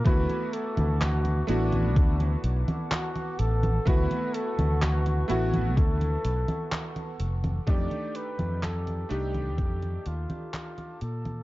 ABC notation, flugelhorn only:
X:1
M:4/4
L:1/8
Q:1/4=63
K:D
V:1 name="Flugelhorn"
B A F D2 z F A | B A F F A3 z | d B A G2 =F F A |]